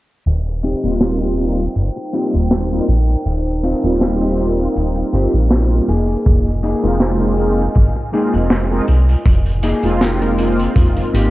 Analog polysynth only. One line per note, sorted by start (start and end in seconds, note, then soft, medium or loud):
0.83 1.34 G3 medium
0.83 1.34 A#3 medium
0.83 1.34 C4 medium
0.83 1.35 D#4 medium
0.83 1.35 F4 loud
1.38 1.63 G3 medium
1.38 1.63 A#3 medium
1.38 1.63 C4 medium
1.38 1.64 D#4 medium
1.38 1.64 F4 medium
2.12 2.66 G3 medium
2.12 2.66 A#3 medium
2.12 2.66 C4 medium
2.12 2.66 D#4 medium
2.12 2.67 F4 medium
2.70 2.85 G3 medium
2.70 2.85 A#3 medium
2.70 2.85 C4 medium
2.70 2.85 D#4 medium
2.70 2.85 F4 loud
3.83 4.34 G3 medium
3.83 4.34 A#3 medium
3.83 4.35 C4 medium
3.83 4.35 D#4 medium
3.83 4.35 F4 loud
4.37 5.86 G3 medium
4.37 5.86 A#3 medium
4.37 5.86 C4 medium
4.37 5.87 D#4 medium
4.37 5.87 F4 medium
6.82 7.34 G#3 loud
6.82 7.34 A#3 medium
6.82 7.34 C4 medium
6.82 7.34 D#4 medium
6.82 7.34 F4 loud
7.38 7.63 G#3 medium
7.38 7.63 A#3 medium
7.38 7.63 C4 medium
7.38 7.63 D#4 medium
7.38 7.64 F4 medium
8.12 8.66 G#3 medium
8.12 8.66 A#3 medium
8.12 8.66 C4 medium
8.12 8.66 D#4 medium
8.12 8.66 F4 medium
8.70 8.84 G#3 medium
8.70 8.85 A#3 medium
8.70 8.85 C4 medium
8.70 8.85 D#4 medium
8.70 8.85 F4 loud
9.83 10.34 G#3 medium
9.83 10.34 A#3 medium
9.83 10.34 C4 medium
9.83 10.34 D#4 medium
9.83 10.35 F4 loud
10.37 11.30 G#3 medium
10.37 11.30 A#3 medium
10.37 11.30 C4 medium
10.37 11.30 D#4 medium
10.37 11.30 F4 medium